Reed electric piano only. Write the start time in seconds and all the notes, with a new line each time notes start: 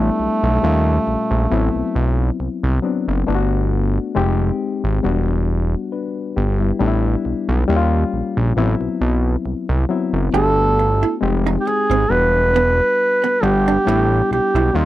Already playing: G3 B3 D4 E4
0.62 A#2 G3 C#4 F4
1.50 F#3 B3 C4 E4
2.82 F#3 B3 C4 D4
3.27 A3 B3 D4 E4
3.35 F#4
4.15 G#3 C4 D#4 G4
5.03 G3 B3 D4 F#4
5.92 D4 B4
6.36 B3 G4
6.60 G3 E4
6.79 G3 B3 D4 D#4
6.88 E4
7.68 G3 A#3 C#4 E4
7.76 F4
8.56 F3 B3 C4 E4
8.62 F#3
9.89 F#3 B3 C4 E4
10.33 A3 B3 D4 F#4
11.21 G#3 C4 D#4 G4
12.09 G3 B3 D4 F#4
13.41 G3 B3 D4 F#5
13.85 G3 B3 D4 E4
14.73 G3 A#3 C#4 F4